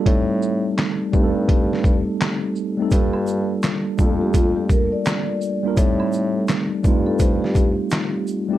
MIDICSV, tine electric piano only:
0, 0, Header, 1, 2, 480
1, 0, Start_track
1, 0, Tempo, 714286
1, 38, Time_signature, 4, 2, 24, 8
1, 5766, End_track
2, 0, Start_track
2, 0, Title_t, "Tine electric piano"
2, 0, Program_c, 0, 4
2, 0, Control_c, 0, 64, 127
2, 31, Note_on_c, 0, 55, 81
2, 40, Note_on_c, 0, 57, 73
2, 47, Control_c, 0, 64, 0
2, 49, Note_on_c, 0, 60, 73
2, 55, Note_on_c, 0, 63, 73
2, 65, Note_on_c, 0, 69, 84
2, 165, Control_c, 0, 64, 127
2, 497, Note_off_c, 0, 55, 0
2, 501, Note_off_c, 0, 57, 0
2, 506, Note_off_c, 0, 60, 0
2, 509, Note_off_c, 0, 63, 0
2, 513, Note_off_c, 0, 69, 0
2, 753, Note_on_c, 0, 55, 83
2, 761, Note_on_c, 0, 57, 72
2, 769, Note_on_c, 0, 60, 75
2, 778, Note_on_c, 0, 63, 71
2, 786, Note_on_c, 0, 67, 67
2, 827, Note_off_c, 0, 67, 0
2, 829, Note_on_c, 0, 69, 91
2, 1392, Note_off_c, 0, 55, 0
2, 1396, Note_off_c, 0, 57, 0
2, 1401, Note_off_c, 0, 60, 0
2, 1405, Note_off_c, 0, 63, 0
2, 1430, Note_off_c, 0, 69, 0
2, 1864, Note_on_c, 0, 55, 78
2, 1872, Note_on_c, 0, 57, 78
2, 1880, Note_on_c, 0, 60, 75
2, 1889, Note_on_c, 0, 63, 75
2, 1896, Note_on_c, 0, 69, 88
2, 1923, Note_off_c, 0, 55, 0
2, 1927, Note_off_c, 0, 57, 0
2, 1931, Note_off_c, 0, 60, 0
2, 1935, Note_off_c, 0, 63, 0
2, 1939, Note_off_c, 0, 69, 0
2, 1957, Note_on_c, 0, 55, 79
2, 1963, Note_on_c, 0, 58, 73
2, 1967, Control_c, 0, 64, 0
2, 1973, Note_on_c, 0, 62, 70
2, 1981, Note_on_c, 0, 65, 72
2, 1989, Note_on_c, 0, 69, 88
2, 2067, Control_c, 0, 64, 127
2, 2420, Note_off_c, 0, 55, 0
2, 2423, Note_off_c, 0, 58, 0
2, 2427, Note_off_c, 0, 62, 0
2, 2431, Note_off_c, 0, 65, 0
2, 2436, Note_off_c, 0, 69, 0
2, 2672, Note_on_c, 0, 55, 84
2, 2681, Note_on_c, 0, 57, 57
2, 2689, Note_on_c, 0, 62, 73
2, 2698, Note_on_c, 0, 65, 73
2, 2706, Note_on_c, 0, 69, 84
2, 2726, Note_on_c, 0, 58, 71
2, 2735, Note_off_c, 0, 57, 0
2, 3312, Note_off_c, 0, 55, 0
2, 3320, Note_off_c, 0, 62, 0
2, 3325, Note_off_c, 0, 65, 0
2, 3329, Note_off_c, 0, 69, 0
2, 3339, Note_off_c, 0, 58, 0
2, 3783, Note_on_c, 0, 55, 86
2, 3793, Note_on_c, 0, 58, 77
2, 3800, Note_on_c, 0, 62, 75
2, 3809, Note_on_c, 0, 65, 79
2, 3816, Note_on_c, 0, 70, 94
2, 3842, Note_off_c, 0, 55, 0
2, 3848, Note_off_c, 0, 58, 0
2, 3851, Note_off_c, 0, 62, 0
2, 3855, Note_off_c, 0, 65, 0
2, 3859, Note_off_c, 0, 70, 0
2, 3871, Note_on_c, 0, 55, 82
2, 3880, Note_on_c, 0, 57, 70
2, 3886, Control_c, 0, 64, 0
2, 3888, Note_on_c, 0, 59, 59
2, 3897, Note_on_c, 0, 63, 68
2, 3904, Note_on_c, 0, 69, 81
2, 3932, Note_on_c, 0, 60, 73
2, 3938, Note_off_c, 0, 59, 0
2, 4001, Control_c, 0, 64, 127
2, 4336, Note_off_c, 0, 55, 0
2, 4341, Note_off_c, 0, 57, 0
2, 4349, Note_off_c, 0, 63, 0
2, 4353, Note_off_c, 0, 69, 0
2, 4367, Note_off_c, 0, 60, 0
2, 4590, Note_on_c, 0, 55, 84
2, 4599, Note_on_c, 0, 57, 74
2, 4604, Note_on_c, 0, 60, 71
2, 4615, Note_on_c, 0, 63, 71
2, 4622, Note_on_c, 0, 65, 96
2, 5231, Note_off_c, 0, 55, 0
2, 5235, Note_off_c, 0, 57, 0
2, 5238, Note_off_c, 0, 60, 0
2, 5243, Note_off_c, 0, 63, 0
2, 5247, Note_off_c, 0, 65, 0
2, 5699, Note_on_c, 0, 55, 87
2, 5709, Note_on_c, 0, 57, 76
2, 5715, Note_on_c, 0, 60, 81
2, 5724, Note_on_c, 0, 63, 75
2, 5733, Note_on_c, 0, 67, 96
2, 5761, Note_off_c, 0, 55, 0
2, 5765, Note_off_c, 0, 57, 0
2, 5766, Note_off_c, 0, 60, 0
2, 5766, Note_off_c, 0, 63, 0
2, 5766, Note_off_c, 0, 67, 0
2, 5766, End_track
0, 0, End_of_file